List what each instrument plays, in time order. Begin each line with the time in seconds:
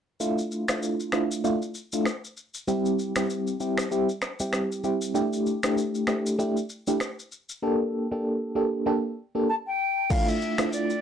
0.20 fm electric piano A3 D4 E4 F4, shaker
0.38 shaker
0.52 shaker
0.68 fm electric piano A3 D4 E4 F4, finger snap, cross-stick, shaker
0.83 shaker
1.00 shaker
1.12 fm electric piano A3 D4 E4 F4, finger snap, cross-stick, shaker
1.31 shaker
1.44 fm electric piano A3 D4 E4 F4, shaker
1.62 shaker
1.75 shaker
1.92 fm electric piano A3 D4 E4 F4, shaker
2.06 finger snap, cross-stick, shaker
2.25 shaker
2.37 shaker
2.54 shaker
2.67 fm electric piano G3 C4 E4 G4, shaker
2.86 shaker
2.99 shaker
3.16 fm electric piano G3 C4 E4 G4, finger snap, cross-stick, shaker
3.30 shaker
3.47 shaker
3.60 fm electric piano G3 C4 E4 G4, shaker
3.78 finger snap, cross-stick, shaker
3.91 fm electric piano G3 C4 E4 G4, shaker
4.09 shaker
4.22 finger snap, cross-stick, shaker
4.40 fm electric piano G3 C4 E4 G4, shaker
4.53 finger snap, cross-stick, shaker
4.72 shaker
4.84 fm electric piano G3 C4 E4 G4, shaker
5.01 shaker
5.14 fm electric piano A3 D4 E4 G4, shaker
5.33 shaker
5.46 shaker
5.63 fm electric piano A3 D4 E4 G4, finger snap, cross-stick, shaker
5.78 shaker
5.95 shaker
6.07 fm electric piano A3 D4 E4 G4, finger snap, cross-stick, shaker
6.26 shaker
6.38 fm electric piano A3 D4 E4 G4, shaker
6.57 shaker
6.69 shaker
6.87 fm electric piano A3 D4 E4 G4, shaker
7.00 finger snap, cross-stick, shaker
7.19 shaker
7.32 shaker
7.49 shaker
7.62 fm electric piano A#3 D4 G4 A4
8.11 fm electric piano A#3 D4 G4 A4
8.55 fm electric piano A#3 D4 G4 A4
8.86 fm electric piano A#3 D4 G4 A4
9.35 fm electric piano A#3 D4 G4 A4
9.49 flute A5
9.67 flute G5
10.10 fm electric piano A3 D4 E4 F4, flute F5, kick, crash, shaker
10.28 flute E5, shaker
10.41 shaker
10.58 fm electric piano A3 D4 E4 F4, finger snap, cross-stick, shaker
10.73 flute D5, shaker
10.90 shaker